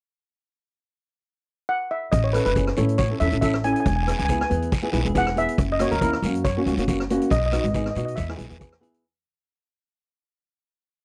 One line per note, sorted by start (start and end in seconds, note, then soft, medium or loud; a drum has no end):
1.69 1.89 F#5 medium
1.91 2.01 E5 medium
2.12 2.38 A1 medium
2.12 2.17 D#5 medium
2.12 kick medium
2.12 closed hi-hat medium
2.12 long guiro medium
2.24 2.34 C#5 medium
2.33 2.47 C#4 medium
2.33 2.48 E4 medium
2.33 2.48 A4 medium
2.33 2.44 B4 medium
2.33 cross-stick medium
2.33 closed hi-hat medium
2.46 2.70 F#1 medium
2.46 2.78 B4 medium
2.46 closed hi-hat medium
2.55 2.69 C#4 medium
2.55 2.69 E4 soft
2.55 2.70 G#4 medium
2.55 kick medium
2.55 closed hi-hat medium
2.55 short guiro medium
2.67 cross-stick medium
2.76 3.10 A2 medium
2.76 2.96 C#4 medium
2.76 2.97 E4 medium
2.76 2.97 A4 medium
2.76 2.97 C#5 medium
2.76 closed hi-hat medium
2.76 short guiro medium
2.89 closed hi-hat medium
2.98 3.21 C#5 medium
2.98 kick medium
2.98 closed hi-hat soft
2.98 short guiro medium
2.98 long guiro medium
3.10 3.16 C#4 medium
3.10 3.16 E4 medium
3.10 3.17 A4 medium
3.20 3.29 E2 medium
3.20 3.28 C#4 medium
3.20 3.28 E4 medium
3.20 3.28 A4 medium
3.20 3.40 E5 medium
3.20 closed hi-hat medium
3.32 3.72 A1 medium
3.32 3.38 C#4 medium
3.32 3.38 E4 medium
3.32 3.38 A4 medium
3.32 closed hi-hat medium
3.41 3.55 C#4 medium
3.41 3.55 E4 medium
3.41 3.56 A4 medium
3.41 3.64 E5 medium
3.41 kick medium
3.41 closed hi-hat medium
3.41 short guiro medium
3.54 cross-stick medium
3.64 3.86 C#4 medium
3.64 3.86 E4 medium
3.64 3.86 A4 medium
3.64 3.71 G#5 medium
3.64 closed hi-hat medium
3.73 3.79 G#5 medium
3.73 closed hi-hat medium
3.80 3.86 G#5 medium
3.86 4.11 E1 medium
3.86 3.95 G#5 soft
3.86 kick medium
3.86 closed hi-hat medium
3.86 long guiro medium
3.96 4.02 G#5 medium
4.03 4.20 B3 medium
4.03 4.09 G#5 medium
4.07 4.21 E4 medium
4.07 4.21 G#4 medium
4.07 4.17 G#5 medium
4.07 cross-stick medium
4.07 closed hi-hat medium
4.18 4.43 C#2 medium
4.18 4.24 G#5 soft
4.18 closed hi-hat medium
4.25 4.42 B3 medium
4.25 4.31 G#5 medium
4.25 short guiro medium
4.29 4.42 E4 medium
4.29 4.43 G#4 medium
4.29 4.39 G#5 medium
4.29 kick medium
4.29 closed hi-hat medium
4.41 4.47 G#5 medium
4.41 cross-stick medium
4.49 4.83 E2 medium
4.49 4.69 B3 medium
4.49 4.69 E4 medium
4.49 4.70 G#4 medium
4.49 closed hi-hat medium
4.62 closed hi-hat medium
4.72 kick medium
4.72 closed hi-hat soft
4.72 short guiro medium
4.72 long guiro medium
4.82 4.89 B3 medium
4.82 4.89 E4 medium
4.82 4.89 G#4 medium
4.92 5.02 B1 medium
4.92 5.00 B3 medium
4.92 5.00 E4 medium
4.92 5.00 G#4 medium
4.92 closed hi-hat medium
5.05 5.45 E1 medium
5.05 5.11 B3 medium
5.05 5.11 E4 medium
5.05 5.11 G#4 medium
5.05 closed hi-hat medium
5.14 5.28 B3 medium
5.14 5.28 E4 medium
5.14 5.29 G#4 medium
5.14 5.27 F#5 loud
5.14 kick medium
5.14 closed hi-hat soft
5.14 short guiro medium
5.27 cross-stick medium
5.36 5.58 B3 medium
5.36 5.58 E4 medium
5.36 5.58 G#4 medium
5.36 5.71 E5 loud
5.36 closed hi-hat medium
5.49 closed hi-hat medium
5.58 5.83 F#1 medium
5.58 kick medium
5.58 closed hi-hat medium
5.58 long guiro medium
5.72 5.81 D#5 medium
5.79 5.93 A#3 medium
5.79 5.93 C#4 medium
5.79 5.93 F#4 medium
5.79 5.92 C#5 medium
5.79 cross-stick medium
5.79 closed hi-hat medium
5.91 6.15 D#2 medium
5.91 6.01 A#4 medium
5.91 closed hi-hat soft
6.01 6.15 A#3 medium
6.01 6.16 C#4 soft
6.01 6.16 E4 medium
6.01 6.46 A#4 medium
6.01 kick medium
6.01 closed hi-hat medium
6.01 short guiro medium
6.13 cross-stick medium
6.22 6.55 F#2 medium
6.22 6.43 A#3 medium
6.22 6.43 C#4 medium
6.22 6.43 F#4 medium
6.22 closed hi-hat medium
6.22 short guiro medium
6.35 closed hi-hat medium
6.44 7.34 C#5 medium
6.44 kick medium
6.44 closed hi-hat soft
6.44 short guiro medium
6.44 long guiro medium
6.57 6.62 A#3 medium
6.57 6.62 C#4 medium
6.57 6.63 F#4 medium
6.66 6.75 C#2 medium
6.66 6.73 A#3 medium
6.66 6.73 C#4 medium
6.66 6.73 F#4 medium
6.66 closed hi-hat medium
6.77 7.18 F#1 medium
6.77 6.84 A#3 medium
6.77 6.84 C#4 medium
6.77 6.84 F#4 medium
6.77 closed hi-hat medium
6.87 7.01 A#3 medium
6.87 7.02 C#4 medium
6.87 7.02 F#4 medium
6.87 kick medium
6.87 closed hi-hat medium
6.87 short guiro medium
7.00 cross-stick medium
7.10 7.31 A#3 medium
7.10 7.31 C#4 medium
7.10 7.32 F#4 medium
7.10 closed hi-hat medium
7.21 closed hi-hat medium
7.30 7.56 B1 medium
7.30 7.38 D#5 medium
7.30 kick medium
7.30 closed hi-hat medium
7.30 long guiro medium
7.39 7.45 D#5 medium
7.46 7.52 D#5 medium
7.51 7.66 B3 medium
7.51 7.66 D#4 medium
7.51 7.66 F#4 medium
7.51 7.60 D#5 soft
7.51 cross-stick medium
7.51 closed hi-hat medium
7.61 7.88 G#1 medium
7.61 7.67 D#5 medium
7.61 closed hi-hat soft
7.68 7.74 D#5 soft
7.74 7.88 B3 medium
7.74 7.88 D#4 medium
7.74 7.88 G#4 medium
7.74 7.83 D#5 medium
7.74 kick medium
7.74 closed hi-hat medium
7.74 short guiro medium
7.84 7.89 D#5 soft
7.84 cross-stick medium
7.91 7.97 D#5 medium
7.95 8.12 B2 medium
7.95 8.16 B3 medium
7.95 8.16 D#4 medium
7.95 8.16 F#4 medium
7.95 8.04 D#5 medium
7.95 closed hi-hat medium
7.95 short guiro medium
8.05 8.13 D#5 medium
8.05 closed hi-hat medium
8.16 8.34 E2 medium
8.16 8.78 E5 medium
8.16 kick medium
8.16 closed hi-hat medium
8.16 short guiro medium
8.16 long guiro medium
8.28 8.35 B3 medium
8.28 8.35 E4 medium
8.28 8.35 G#4 medium
8.28 cross-stick medium
8.36 8.47 B1 medium
8.36 8.45 B3 medium
8.36 closed hi-hat medium
8.49 8.91 E2 medium
8.49 8.56 B3 medium
8.49 8.57 E4 medium
8.49 8.57 G#4 medium
8.49 closed hi-hat medium
8.59 8.74 B3 medium
8.59 8.74 E4 medium
8.59 8.74 G#4 medium
8.59 kick medium
8.59 closed hi-hat medium
8.59 short guiro medium
8.72 cross-stick medium
8.80 9.03 B3 medium
8.80 9.03 E4 medium
8.80 9.04 G#4 medium
8.80 closed hi-hat medium
8.94 closed hi-hat medium